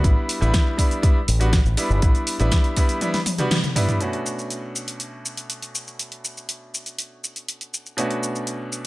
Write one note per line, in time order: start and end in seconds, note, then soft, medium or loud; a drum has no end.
0.04 0.14 A1 loud
0.04 0.38 G3 medium
0.04 0.39 B3 medium
0.04 0.39 D4 medium
0.04 0.39 E4 medium
0.04 kick loud
0.04 closed hi-hat medium
0.04 shaker soft
0.29 open hi-hat loud
0.29 shaker medium
0.41 0.51 A1 medium
0.41 0.75 G3 medium
0.41 0.76 B3 medium
0.41 0.76 D4 medium
0.41 0.76 E4 medium
0.41 shaker soft
0.54 kick loud
0.54 snare loud
0.54 closed hi-hat medium
0.54 shaker soft
0.77 1.00 G3 medium
0.77 1.00 B3 medium
0.77 1.00 D4 medium
0.77 1.01 E4 medium
0.77 kick medium
0.77 open hi-hat loud
0.77 shaker medium
0.91 closed hi-hat medium
0.91 shaker soft
1.02 1.18 G3 medium
1.02 1.18 B3 medium
1.02 1.18 D4 medium
1.02 1.18 E4 medium
1.02 kick loud
1.02 closed hi-hat medium
1.02 shaker soft
1.28 1.60 A1 loud
1.28 open hi-hat medium
1.28 shaker medium
1.40 1.55 G3 medium
1.40 1.55 B3 medium
1.40 1.55 D4 medium
1.40 1.55 F#4 medium
1.40 closed hi-hat medium
1.40 shaker soft
1.53 kick loud
1.53 snare loud
1.53 closed hi-hat medium
1.53 shaker soft
1.65 1.74 A1 loud
1.65 shaker soft
1.77 1.99 G3 medium
1.77 2.00 B3 medium
1.77 2.00 D4 medium
1.77 2.00 E4 medium
1.77 open hi-hat loud
1.77 shaker medium
1.90 1.99 G1 loud
1.90 shaker soft
2.02 2.12 A1 medium
2.02 2.37 G3 medium
2.02 2.37 B3 medium
2.02 2.37 D4 medium
2.02 2.37 E4 medium
2.02 kick loud
2.02 closed hi-hat medium
2.02 shaker soft
2.15 closed hi-hat soft
2.15 shaker soft
2.27 open hi-hat loud
2.27 shaker medium
2.39 2.49 A1 medium
2.39 2.74 G3 medium
2.39 2.74 B3 medium
2.39 2.74 D4 medium
2.39 2.74 E4 medium
2.39 closed hi-hat soft
2.39 shaker soft
2.52 kick loud
2.52 snare loud
2.52 closed hi-hat medium
2.52 shaker soft
2.64 closed hi-hat soft
2.77 2.99 G3 medium
2.77 2.99 B3 medium
2.77 2.99 D4 medium
2.77 2.99 E4 medium
2.77 kick medium
2.77 open hi-hat loud
2.77 shaker medium
2.89 closed hi-hat medium
2.89 shaker soft
3.01 3.16 G3 medium
3.01 3.17 B3 medium
3.01 3.17 D4 medium
3.01 3.17 E4 medium
3.01 closed hi-hat medium
3.01 high tom medium
3.01 shaker soft
3.14 snare soft
3.14 open hi-hat medium
3.14 high tom medium
3.14 shaker soft
3.26 open hi-hat loud
3.26 high tom medium
3.26 shaker medium
3.38 3.54 G3 medium
3.38 3.54 B3 medium
3.38 3.54 D4 medium
3.38 3.54 F#4 medium
3.38 closed hi-hat medium
3.38 mid tom medium
3.38 shaker soft
3.51 snare loud
3.51 closed hi-hat medium
3.51 mid tom medium
3.51 shaker soft
3.64 closed hi-hat soft
3.64 mid tom medium
3.64 shaker soft
3.76 3.98 G3 medium
3.76 3.98 B3 medium
3.76 3.98 D4 medium
3.76 3.98 E4 medium
3.76 mid tom loud
3.76 open hi-hat loud
3.76 shaker medium
3.89 closed hi-hat soft
3.89 mid tom medium
3.89 shaker soft
4.00 7.95 B2 medium
4.00 7.95 A3 medium
4.00 7.95 C#4 medium
4.00 7.95 D4 medium
4.00 7.95 F#4 medium
4.00 closed hi-hat medium
4.00 shaker soft
4.13 closed hi-hat soft
4.26 shaker medium
4.39 shaker soft
4.50 closed hi-hat medium
4.50 shaker soft
4.76 shaker medium
4.88 closed hi-hat soft
4.88 shaker soft
5.00 closed hi-hat medium
5.00 shaker soft
5.26 shaker medium
5.37 closed hi-hat soft
5.37 shaker soft
5.50 closed hi-hat medium
5.50 shaker soft
5.62 closed hi-hat soft
5.62 shaker soft
5.75 shaker medium
5.88 shaker soft
5.99 closed hi-hat medium
5.99 shaker soft
6.12 closed hi-hat soft
6.25 shaker medium
6.37 shaker soft
6.49 closed hi-hat medium
6.49 shaker soft
6.74 shaker medium
6.86 closed hi-hat soft
6.86 shaker soft
6.99 closed hi-hat medium
6.99 shaker soft
7.24 shaker medium
7.36 closed hi-hat soft
7.36 shaker soft
7.48 closed hi-hat medium
7.48 shaker soft
7.61 closed hi-hat soft
7.61 shaker soft
7.74 shaker medium
7.86 shaker soft
7.97 8.87 B2 medium
7.97 8.87 A3 medium
7.97 8.87 C#4 medium
7.97 8.87 D4 medium
7.97 8.87 F#4 medium
7.97 closed hi-hat medium
7.97 shaker soft
8.11 closed hi-hat soft
8.23 shaker medium
8.35 shaker soft
8.47 closed hi-hat medium
8.47 shaker soft
8.72 shaker medium